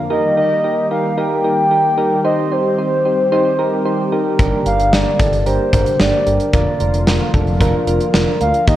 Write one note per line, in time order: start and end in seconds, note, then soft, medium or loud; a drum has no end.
0.00 2.21 A#3 medium
0.10 4.35 D#3 medium
0.10 6.49 G3 medium
0.10 0.30 D#4 medium
0.10 0.30 G4 medium
0.10 6.49 G4 medium
0.10 0.30 A#4 loud
0.10 0.35 D#5 loud
0.37 0.56 D#4 medium
0.37 0.56 G4 medium
0.37 0.56 A#4 medium
0.37 0.87 D#5 loud
0.64 0.83 D#4 medium
0.64 0.83 G4 medium
0.64 0.83 A#4 medium
0.91 1.10 D#4 medium
0.91 1.10 G4 medium
0.91 1.10 A#4 medium
0.91 1.16 F5 loud
1.18 1.37 D#4 medium
1.18 1.37 G4 medium
1.18 1.37 A#4 loud
1.18 2.21 G5 loud
1.44 1.63 D#4 medium
1.44 1.63 G4 medium
1.44 1.63 A#4 medium
1.71 1.90 D#4 medium
1.71 1.90 G4 medium
1.71 1.90 A#4 medium
1.98 2.17 D#4 medium
1.98 2.17 G4 medium
1.98 2.17 A#4 loud
2.25 4.37 C4 medium
2.25 2.44 D#4 medium
2.25 2.44 G4 medium
2.25 2.44 C5 loud
2.25 2.53 D#5 loud
2.52 2.71 D#4 medium
2.52 2.71 G4 medium
2.52 2.71 C5 medium
2.52 4.12 C5 loud
2.78 2.97 D#4 medium
2.78 2.97 G4 medium
2.78 2.97 C5 medium
3.05 3.24 D#4 medium
3.05 3.24 G4 medium
3.05 3.24 C5 medium
3.32 3.51 D#4 loud
3.32 3.51 G4 loud
3.32 3.51 C5 loud
3.59 3.78 D#4 medium
3.59 3.78 G4 medium
3.59 3.78 A#4 loud
3.86 4.05 D#4 medium
3.86 4.05 G4 medium
3.86 4.05 C5 medium
4.12 4.31 D#4 medium
4.12 4.31 G4 medium
4.12 4.31 A#4 medium
4.39 4.51 G1 loud
4.39 8.64 D3 medium
4.39 8.76 A#3 medium
4.39 4.58 D4 loud
4.39 4.58 G4 loud
4.39 4.58 A#4 loud
4.39 kick loud
4.39 closed hi-hat medium
4.66 4.78 G1 medium
4.66 4.85 D4 medium
4.66 4.85 G4 medium
4.66 4.85 A#4 medium
4.66 4.94 F5 loud
4.66 closed hi-hat medium
4.79 4.91 G1 medium
4.79 closed hi-hat medium
4.93 5.05 G1 loud
4.93 5.12 D4 medium
4.93 5.12 G4 medium
4.93 5.12 A#4 medium
4.93 5.46 D5 loud
4.93 snare loud
5.19 5.31 G1 medium
5.19 5.38 D4 medium
5.19 5.38 G4 medium
5.19 5.38 A4 medium
5.19 kick medium
5.19 closed hi-hat medium
5.33 5.45 G1 medium
5.33 closed hi-hat soft
5.46 5.58 G1 loud
5.46 5.65 D4 medium
5.46 5.65 G4 medium
5.46 5.65 A#4 loud
5.46 6.01 C5 loud
5.46 closed hi-hat medium
5.73 5.85 G1 loud
5.73 5.92 D4 medium
5.73 5.92 G4 medium
5.73 5.92 A#4 medium
5.73 kick medium
5.73 closed hi-hat medium
5.86 closed hi-hat soft
6.00 6.12 G1 loud
6.00 6.19 D4 medium
6.00 6.19 G4 medium
6.00 6.19 A#4 medium
6.00 6.53 D5 loud
6.00 snare loud
6.26 6.39 G1 medium
6.26 6.46 D4 medium
6.26 6.46 G4 medium
6.26 6.46 A#4 medium
6.26 closed hi-hat medium
6.40 closed hi-hat medium
6.53 6.65 F1 loud
6.53 8.66 F3 medium
6.53 6.72 D4 medium
6.53 6.72 F4 medium
6.53 8.66 F4 medium
6.53 6.72 A#4 loud
6.53 7.03 D5 medium
6.53 kick loud
6.53 closed hi-hat medium
6.80 6.92 F1 loud
6.80 6.99 D4 medium
6.80 6.99 F4 medium
6.80 6.99 A#4 medium
6.80 closed hi-hat medium
6.94 7.06 F1 medium
6.94 closed hi-hat medium
7.07 7.19 F1 loud
7.07 7.26 D4 medium
7.07 7.26 F4 medium
7.07 7.26 A#4 medium
7.07 snare loud
7.34 7.46 F1 medium
7.34 7.53 D4 medium
7.34 7.53 F4 medium
7.34 7.53 A4 medium
7.34 kick medium
7.34 closed hi-hat medium
7.47 7.59 F1 loud
7.47 closed hi-hat soft
7.60 7.72 F1 loud
7.60 7.80 D4 loud
7.60 7.80 F4 loud
7.60 7.80 A#4 loud
7.60 kick medium
7.60 closed hi-hat medium
7.87 7.99 F1 loud
7.87 8.06 D4 medium
7.87 8.06 F4 medium
7.87 8.06 A#4 medium
7.87 closed hi-hat medium
8.01 closed hi-hat soft
8.14 8.26 F1 loud
8.14 8.33 D4 medium
8.14 8.33 F4 medium
8.14 8.33 A#4 medium
8.14 snare loud
8.41 8.53 D2 medium
8.41 8.60 D4 medium
8.41 8.60 F4 medium
8.41 8.60 A#4 medium
8.41 8.66 F5 loud
8.41 closed hi-hat medium
8.54 closed hi-hat medium
8.68 8.76 D#2 loud
8.68 8.76 D#3 medium
8.68 8.76 G3 medium
8.68 8.76 D#4 medium
8.68 8.76 G4 medium
8.68 8.76 A#4 loud
8.68 8.76 D#5 loud
8.68 kick loud
8.68 closed hi-hat medium